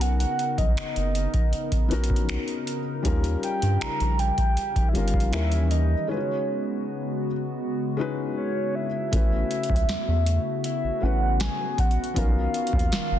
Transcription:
Already playing: analog synth bass B1, analog synth pad C#3 B3 D#4 A#4, felt piano B3 C#4 D#4 F#4 A#4
0.01 soft synth lead F#5, closed hi-hat
0.20 soft synth lead F#5, closed hi-hat
0.39 closed hi-hat
0.58 analog synth bass B1, soft synth lead D#5, kick, closed hi-hat
0.77 analog synth bass F#1, soft synth lead D#5, finger snap, closed hi-hat
0.96 analog synth bass F#1, closed hi-hat
1.15 closed hi-hat
1.34 kick, closed hi-hat
1.53 closed hi-hat
1.72 analog synth bass A#1, kick, closed hi-hat
1.89 analog synth bass A#1, felt piano B3 C#4 D#4 F#4, closed hi-hat
1.93 felt piano A#4
2.04 closed hi-hat
2.10 kick
2.16 closed hi-hat
2.29 finger snap, closed hi-hat
2.48 closed hi-hat
2.67 closed hi-hat
3.03 analog synth bass D#2, felt piano G3 C#4 D#4 F4, analog synth pad G3, kick, closed hi-hat
3.07 felt piano A#4
3.24 closed hi-hat
3.43 soft synth lead G5, closed hi-hat
3.62 analog synth bass G2, closed hi-hat
3.81 analog synth bass A#1, soft synth lead A#5, finger snap, closed hi-hat
4.00 analog synth bass A#1, closed hi-hat
4.19 soft synth lead G5, closed hi-hat
4.38 kick, closed hi-hat
4.57 closed hi-hat
4.76 analog synth bass G1, kick, closed hi-hat
4.89 soft synth lead E5
4.93 analog synth bass G1, felt piano G3 C#4 D#4 F4, soft synth lead F5, closed hi-hat
4.98 felt piano A#4
5.08 closed hi-hat
5.14 kick
5.20 closed hi-hat
5.31 analog synth bass D#2, analog synth pad D#3 E3 C#4, felt piano G3 C#4 D#4 E4, soft synth lead E5, finger snap, closed hi-hat
5.35 felt piano A#4
5.52 closed hi-hat
5.71 soft synth lead D#5, closed hi-hat
6.07 analog synth pad C#3 G#3 B3 F#4, felt piano G#3 C#4 D#4 F4, soft synth lead C#5
6.11 felt piano B4
6.17 felt piano F#4
7.97 felt piano G#3 C#4 D#4 F#4
8.01 felt piano B4
8.37 soft synth lead C#5
8.75 soft synth lead E5
9.11 analog synth bass A1, analog synth pad C#3 A3 B3 F#4, felt piano A3 C#4 E4 F#4, kick, closed hi-hat
9.16 felt piano B4
9.51 closed hi-hat
9.63 closed hi-hat
9.70 analog synth bass C#2, kick
9.76 closed hi-hat
9.89 analog synth bass E2, snare, closed hi-hat
10.08 analog synth bass E2
10.26 closed hi-hat
10.64 soft synth lead E5, closed hi-hat
10.84 analog synth bass A1
11.01 analog synth bass A1, felt piano A3 C#4 E4 F#4, soft synth lead F#5
11.05 felt piano B4
11.40 soft synth lead G#5, snare, closed hi-hat
11.78 soft synth lead F#5, kick, closed hi-hat
11.91 closed hi-hat
12.04 closed hi-hat
12.14 analog synth bass B1, analog synth pad D#3 A#4, felt piano B3 C#4 D#4 F#4, soft synth lead F5, kick, closed hi-hat
12.18 felt piano A#4
12.54 closed hi-hat
12.67 closed hi-hat
12.73 analog synth bass D#2, kick
12.79 closed hi-hat
12.92 analog synth bass F#1, snare, closed hi-hat
13.12 analog synth bass F#1

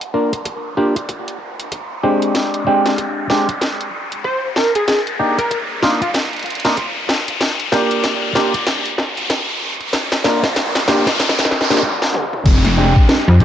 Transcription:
Already playing: riser
0.01 closed hi-hat
0.14 clav A#3 D4 F4 A#4
0.33 closed hi-hat
0.45 kick, closed hi-hat
0.77 clav A#3 D4 F4 G4
0.96 closed hi-hat
1.09 kick, closed hi-hat
1.28 closed hi-hat
1.59 closed hi-hat
1.72 kick, closed hi-hat
2.03 clav G#3 C4 D4 G4
2.22 closed hi-hat
2.35 kick, snare, closed hi-hat
2.54 closed hi-hat
2.67 clav G#3 C4 D4 G4
2.86 snare, closed hi-hat
2.98 kick, closed hi-hat
3.30 clav G#3 C4 D4 G4, snare
3.49 closed hi-hat
3.61 kick, snare, closed hi-hat
3.81 closed hi-hat
4.12 closed hi-hat
4.24 digital synth lead C5, kick
4.56 digital synth lead A#4, snare
4.75 digital synth lead G#4, closed hi-hat
4.88 digital synth lead G#4, kick, snare, closed hi-hat
5.07 closed hi-hat
5.19 clav A#3 D4 D#4 G4
5.38 digital synth lead A#4, closed hi-hat
5.51 kick, closed hi-hat
5.82 clav A#3 D4 D#4 F4, digital synth lead F4, snare
6.02 digital synth lead F4, closed hi-hat
6.14 kick, snare, closed hi-hat
6.33 closed hi-hat
6.36 closed hi-hat
6.39 closed hi-hat
6.43 closed hi-hat
6.46 closed hi-hat
6.50 closed hi-hat
6.55 closed hi-hat
6.60 closed hi-hat
6.65 clav A#3 D4 D#4 F4, snare, closed hi-hat
6.77 kick, closed hi-hat
7.09 snare
7.28 closed hi-hat
7.40 kick, snare, closed hi-hat
7.60 closed hi-hat
7.72 clav A#3 D4 F4 G4, snare
7.91 closed hi-hat
8.04 kick, snare, closed hi-hat
8.35 clav A#3 D4 F4 G4, snare
8.54 closed hi-hat
8.67 kick, snare, closed hi-hat
8.86 closed hi-hat
8.98 snare
9.17 closed hi-hat
9.30 kick, snare, closed hi-hat
9.81 closed hi-hat
9.93 kick, snare, closed hi-hat, noise sweep
10.12 snare, closed hi-hat
10.25 clav A#3 D4 F4 A#4, snare
10.44 snare, closed hi-hat
10.56 kick, snare, closed hi-hat
10.75 snare, closed hi-hat
10.88 clav A#3 D4 F4 G4, snare
11.07 snare, closed hi-hat
11.19 kick, snare, closed hi-hat
11.29 snare
11.39 snare, closed hi-hat
11.45 snare
11.51 snare
11.61 snare, closed hi-hat
11.70 clav A#3 D4 F4 G4, snare
11.77 snare
11.83 high tom
12.02 snare
12.14 mid tom
12.33 mid tom
12.46 detuned saw bass F1, kick, closed hi-hat, crash, downlifter
12.65 snare, closed hi-hat
12.77 clav G#3 C4 D4 G4
12.96 kick
13.09 snare, closed hi-hat
13.28 fm bass F2
13.40 clav G#3 C4 D4 G4, kick, closed hi-hat

